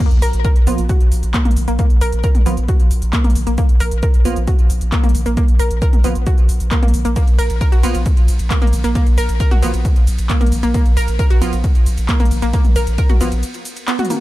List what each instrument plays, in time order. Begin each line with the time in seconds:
0.00 sub drop
0.11 sub bass A#1, closed hi-hat, shaker
0.22 sub bass A#1, synth arpeggio sound A#4, open hi-hat, shaker
0.33 sub bass A#1, closed hi-hat, shaker
0.45 synth arpeggio sound A#4, kick, closed hi-hat, shaker
0.56 sub bass A#1, closed hi-hat, shaker
0.67 sub bass A#1, synth stab F3 A#3 F4, synth arpeggio sound B3, open hi-hat, shaker
0.78 sub bass A#1, closed hi-hat, shaker
0.89 synth arpeggio sound F#4, kick, closed hi-hat, shaker
1.01 sub bass A#1, closed hi-hat, shaker
1.12 sub bass A#1, open hi-hat, shaker
1.23 sub bass A#1, closed hi-hat, shaker
1.34 synth arpeggio sound A#3, kick, clap, closed hi-hat, shaker
1.45 sub bass A#1, synth arpeggio sound A#3, closed hi-hat, mid tom, shaker
1.51 closed hi-hat
1.57 sub bass A#1, open hi-hat, shaker
1.68 sub bass A#1, synth arpeggio sound A#3, closed hi-hat, shaker
1.79 synth arpeggio sound A#3, kick, closed hi-hat, shaker
1.90 sub bass A#1, closed hi-hat, shaker
2.01 sub bass A#1, synth arpeggio sound A#4, open hi-hat, shaker
2.12 sub bass A#1, closed hi-hat, shaker
2.24 synth arpeggio sound A#4, kick, closed hi-hat, shaker
2.35 sub bass A#1, closed hi-hat, mid tom, shaker
2.46 sub bass A#1, synth stab F3 A#3 F4, synth arpeggio sound B3, open hi-hat, shaker
2.57 sub bass A#1, closed hi-hat, shaker
2.68 synth arpeggio sound F#4, kick, closed hi-hat, shaker
2.80 sub bass A#1, closed hi-hat, shaker
2.91 sub bass A#1, open hi-hat, shaker
3.02 sub bass A#1, closed hi-hat, shaker
3.13 synth arpeggio sound A#3, kick, clap, closed hi-hat, shaker
3.24 sub bass A#1, synth arpeggio sound A#3, closed hi-hat, mid tom, shaker
3.30 closed hi-hat
3.36 sub bass A#1, open hi-hat, shaker
3.47 sub bass A#1, synth arpeggio sound A#3, closed hi-hat, shaker
3.58 synth arpeggio sound A#3, kick, closed hi-hat, shaker
3.69 sub bass A#1, closed hi-hat, shaker
3.80 sub bass A#1, synth arpeggio sound A#4, open hi-hat, shaker
3.91 sub bass A#1, closed hi-hat, shaker
4.03 synth arpeggio sound A#4, kick, closed hi-hat, shaker
4.14 sub bass A#1, closed hi-hat, shaker
4.25 sub bass A#1, synth stab F3 A#3 F4, synth arpeggio sound B3, open hi-hat, shaker
4.36 sub bass A#1, closed hi-hat, shaker
4.48 synth arpeggio sound F#4, kick, closed hi-hat, shaker
4.59 sub bass A#1, closed hi-hat, shaker
4.70 sub bass A#1, open hi-hat, shaker
4.81 sub bass A#1, closed hi-hat, shaker
4.92 synth arpeggio sound A#3, kick, clap, closed hi-hat, shaker
5.04 sub bass A#1, synth arpeggio sound A#3, closed hi-hat, mid tom, shaker
5.09 closed hi-hat
5.15 sub bass A#1, open hi-hat, shaker
5.26 sub bass A#1, synth arpeggio sound A#3, closed hi-hat, shaker
5.37 synth arpeggio sound A#3, kick, closed hi-hat, shaker
5.48 sub bass A#1, closed hi-hat, shaker
5.59 sub bass A#1, synth arpeggio sound A#4, open hi-hat, shaker
5.71 sub bass A#1, closed hi-hat, shaker
5.82 synth arpeggio sound A#4, kick, closed hi-hat, shaker
5.93 sub bass A#1, closed hi-hat, mid tom, shaker
6.04 sub bass A#1, synth stab F3 A#3 F4, synth arpeggio sound B3, open hi-hat, shaker
6.15 sub bass A#1, closed hi-hat, shaker
6.27 synth arpeggio sound F#4, kick, closed hi-hat, shaker
6.38 sub bass A#1, closed hi-hat, shaker
6.49 sub bass A#1, open hi-hat, shaker
6.60 sub bass A#1, closed hi-hat, shaker
6.71 synth arpeggio sound A#3, kick, clap, closed hi-hat, shaker
6.83 sub bass A#1, synth arpeggio sound A#3, closed hi-hat, mid tom, shaker
6.88 closed hi-hat
6.94 sub bass A#1, open hi-hat, shaker
7.05 sub bass A#1, synth arpeggio sound A#3, closed hi-hat, shaker
7.16 synth arpeggio sound A#3, kick, closed hi-hat, ride, shaker
7.27 sub bass A#1, closed hi-hat, ride, shaker
7.39 sub bass A#1, synth arpeggio sound A#4, open hi-hat, ride, shaker
7.50 sub bass A#1, closed hi-hat, ride, shaker
7.61 synth arpeggio sound A#4, kick, closed hi-hat, ride, shaker
7.72 sub bass A#1, synth arpeggio sound F#4, closed hi-hat, ride, shaker
7.83 sub bass A#1, synth stab F3 A#3 F4, synth arpeggio sound B3, open hi-hat, ride, shaker
7.95 sub bass A#1, closed hi-hat, ride, shaker
8.06 kick, closed hi-hat, ride, shaker
8.17 sub bass A#1, closed hi-hat, ride, shaker
8.28 sub bass A#1, open hi-hat, ride, shaker
8.39 sub bass A#1, closed hi-hat, ride, shaker
8.51 synth arpeggio sound A#3, kick, clap, closed hi-hat, ride, shaker
8.62 sub bass A#1, synth arpeggio sound A#3, closed hi-hat, mid tom, ride, shaker
8.67 closed hi-hat
8.73 sub bass A#1, open hi-hat, ride, shaker
8.84 sub bass A#1, synth arpeggio sound A#3, closed hi-hat, ride, shaker
8.95 synth arpeggio sound A#3, kick, closed hi-hat, ride, shaker
9.06 sub bass A#1, closed hi-hat, ride, shaker
9.18 sub bass A#1, synth arpeggio sound A#4, open hi-hat, ride, shaker
9.29 sub bass A#1, closed hi-hat, ride, shaker
9.40 synth arpeggio sound A#4, kick, closed hi-hat, ride, shaker
9.51 sub bass A#1, synth arpeggio sound F#4, closed hi-hat, mid tom, ride, shaker
9.63 sub bass A#1, synth stab F3 A#3 F4, synth arpeggio sound B3, open hi-hat, ride, shaker
9.74 sub bass A#1, closed hi-hat, ride, shaker
9.85 kick, closed hi-hat, ride, shaker
9.96 sub bass A#1, closed hi-hat, ride, shaker
10.07 sub bass A#1, open hi-hat, ride, shaker
10.19 sub bass A#1, closed hi-hat, ride, shaker
10.30 synth arpeggio sound A#3, kick, clap, closed hi-hat, ride, shaker
10.41 sub bass A#1, synth arpeggio sound A#3, closed hi-hat, mid tom, ride, shaker
10.46 closed hi-hat
10.52 sub bass A#1, open hi-hat, ride, shaker
10.63 sub bass A#1, synth arpeggio sound A#3, closed hi-hat, ride, shaker
10.74 synth arpeggio sound A#3, kick, closed hi-hat, ride, shaker
10.86 sub bass A#1, closed hi-hat, ride, shaker
10.97 sub bass A#1, synth arpeggio sound A#4, open hi-hat, ride, shaker
11.08 sub bass A#1, closed hi-hat, ride, shaker
11.19 synth arpeggio sound A#4, kick, closed hi-hat, ride, shaker
11.30 sub bass A#1, synth arpeggio sound F#4, closed hi-hat, ride, shaker
11.42 sub bass A#1, synth stab F3 A#3 F4, synth arpeggio sound B3, open hi-hat, ride, shaker
11.53 sub bass A#1, closed hi-hat, ride, shaker
11.64 kick, closed hi-hat, ride, shaker
11.75 sub bass A#1, closed hi-hat, ride, shaker
11.86 sub bass A#1, open hi-hat, ride, shaker
11.98 sub bass A#1, closed hi-hat, ride, shaker
12.09 synth arpeggio sound A#3, kick, clap, closed hi-hat, ride, shaker
12.20 sub bass A#1, synth arpeggio sound A#3, closed hi-hat, mid tom, ride, shaker
12.25 closed hi-hat
12.31 sub bass A#1, open hi-hat, ride, shaker
12.42 sub bass A#1, synth arpeggio sound A#3, closed hi-hat, ride, shaker
12.53 synth arpeggio sound A#3, kick, closed hi-hat, ride, shaker
12.65 sub bass A#1, closed hi-hat, mid tom, ride, shaker
12.76 sub bass A#1, synth arpeggio sound A#4, open hi-hat, ride, shaker
12.87 sub bass A#1, closed hi-hat, ride, shaker
12.98 synth arpeggio sound A#4, kick, closed hi-hat, ride, shaker
13.09 sub bass A#1, synth arpeggio sound F#4, closed hi-hat, mid tom, ride, shaker
13.21 sub bass A#1, synth stab F3 A#3 F4, synth arpeggio sound B3, open hi-hat, ride, shaker
13.32 sub bass A#1, closed hi-hat, ride, shaker
13.43 closed hi-hat, ride, shaker
13.54 closed hi-hat, ride, shaker
13.65 open hi-hat, ride, shaker
13.77 closed hi-hat, ride, shaker
13.88 synth arpeggio sound B3, clap, closed hi-hat, ride, shaker
13.99 synth arpeggio sound F#4, closed hi-hat, mid tom, ride, shaker
14.05 closed hi-hat
14.10 synth arpeggio sound A#3, open hi-hat, high tom, ride, shaker